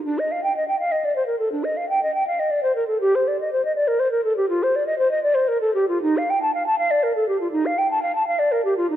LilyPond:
\new Staff \with { instrumentName = "Flute" } { \time 12/8 \key bes \major \tempo 4. = 80 d'16 ees''16 f''16 g''16 ees''16 g''16 f''16 ees''16 d''16 c''16 bes'16 a'16 d'16 ees''16 f''16 g''16 ees''16 g''16 f''16 ees''16 d''16 c''16 bes'16 a'16 | \key ees \lydian g'16 c''16 d''16 ees''16 c''16 ees''16 d''16 bes'16 c''16 bes'16 a'16 g'16 f'16 c''16 d''16 ees''16 c''16 ees''16 d''16 c''16 bes'16 a'16 g'16 f'16 | ees'16 f''16 g''16 a''16 f''16 a''16 f''16 d''16 bes'16 a'16 g'16 f'16 ees'16 f''16 g''16 a''16 f''16 a''16 f''16 d''16 bes'16 g'16 f'16 ees'16 | }